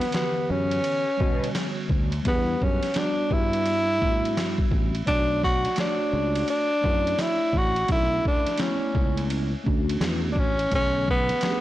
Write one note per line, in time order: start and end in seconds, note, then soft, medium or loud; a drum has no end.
0.00 0.15 B3 loud
0.00 snare soft
0.00 ride medium
0.11 1.04 D3 medium
0.11 1.03 E3 medium
0.11 1.03 B3 medium
0.11 0.22 F#4 medium
0.11 snare loud
0.11 hi-hat pedal soft
0.11 ride medium
0.15 0.53 B3 medium
0.21 1.08 G4 medium
0.50 0.78 F#2 medium
0.50 1.91 C#4 loud
0.71 ride medium
0.84 ride medium
1.17 1.49 B2 loud
1.17 2.10 D3 medium
1.17 2.09 G3 medium
1.17 2.09 B3 medium
1.17 2.11 F#4 medium
1.17 kick medium
1.44 ride medium
1.55 snare loud
1.55 hi-hat pedal medium
1.55 ride medium
1.89 2.19 D2 medium
1.89 kick medium
2.12 ride medium
2.23 2.54 E2 medium
2.23 2.85 G3 medium
2.23 2.86 B3 medium
2.23 2.86 D4 medium
2.23 kick loud
2.23 ride medium
2.27 2.65 B3 medium
2.27 2.87 G4 medium
2.62 2.80 F#2 medium
2.62 2.99 C#4 medium
2.62 kick medium
2.83 snare soft
2.83 ride medium
2.94 3.03 F#3 medium
2.94 3.86 B3 medium
2.94 3.87 D4 medium
2.94 3.87 F#4 medium
2.94 snare loud
2.94 hi-hat pedal soft
2.94 ride medium
2.98 3.89 G3 medium
2.98 3.35 D4 medium
3.31 4.02 G2 medium
3.31 4.73 E4 loud
3.31 kick medium
3.53 ride medium
3.66 ride medium
3.99 4.37 A2 medium
3.99 4.91 G3 medium
3.99 4.92 B3 medium
3.99 4.92 D4 medium
3.99 4.10 F4 medium
3.99 kick medium
4.09 4.96 F#4 medium
4.25 ride medium
4.37 4.66 G2 medium
4.37 snare loud
4.37 hi-hat pedal medium
4.37 ride medium
4.58 kick medium
4.71 5.01 A1 medium
4.71 kick medium
4.95 ride soft
5.05 5.65 B1 medium
5.05 5.67 A3 medium
5.05 5.69 D4 medium
5.05 5.41 D4 loud
5.05 5.69 F#4 medium
5.05 5.68 C#5 medium
5.05 kick loud
5.05 ride medium
5.43 5.76 F#4 loud
5.43 kick medium
5.65 snare soft
5.65 ride medium
5.76 6.68 A3 medium
5.76 6.69 D4 medium
5.76 6.69 C#5 medium
5.76 snare loud
5.76 hi-hat pedal medium
5.76 ride medium
5.80 6.46 D4 medium
5.80 6.70 F#4 medium
6.13 6.42 C#2 medium
6.35 ride medium
6.48 7.23 D4 loud
6.48 ride medium
6.81 7.13 F#2 medium
6.81 7.73 A3 medium
6.81 7.75 D4 medium
6.81 7.75 E4 medium
6.81 7.74 C#5 medium
6.81 kick medium
7.07 ride medium
7.19 7.59 E4 medium
7.19 snare loud
7.19 hi-hat pedal medium
7.19 ride medium
7.53 7.83 A1 medium
7.53 kick medium
7.58 7.91 F#4 loud
7.76 ride soft
7.87 8.18 B1 medium
7.87 8.49 A3 medium
7.87 8.50 C#4 medium
7.87 8.51 D4 medium
7.87 8.51 A4 medium
7.87 kick loud
7.87 ride medium
7.92 8.24 E4 loud
8.25 8.59 D4 medium
8.25 kick medium
8.46 snare soft
8.46 ride medium
8.58 9.50 A3 medium
8.58 9.51 B3 medium
8.58 9.50 C#4 medium
8.58 9.51 E4 medium
8.58 snare loud
8.58 hi-hat pedal soft
8.58 ride medium
8.63 9.28 C#4 medium
8.95 9.53 C#2 medium
8.95 kick medium
9.17 ride medium
9.30 ride medium
9.64 9.95 D2 medium
9.64 10.56 A3 medium
9.64 10.56 C#4 medium
9.64 10.57 D4 medium
9.64 10.57 F#4 medium
9.64 kick medium
9.89 ride medium
10.00 10.36 E2 loud
10.00 snare loud
10.00 hi-hat pedal medium
10.00 ride medium
10.33 10.65 A1 medium
10.33 10.41 D4 medium
10.33 kick medium
10.39 10.73 C#4 loud
10.59 ride medium
10.70 11.30 B1 loud
10.70 11.34 D3 medium
10.70 11.32 A3 medium
10.70 11.33 C#4 medium
10.70 11.34 G#4 medium
10.70 kick loud
10.70 ride medium
10.75 11.07 C#4 loud
11.08 11.61 B3 loud
11.08 kick medium
11.29 snare soft
11.29 ride medium
11.41 11.61 A3 medium
11.41 11.61 C#4 medium
11.41 11.61 D4 medium
11.41 11.52 G4 medium
11.41 snare loud
11.41 hi-hat pedal soft
11.41 ride medium
11.51 11.61 G#4 medium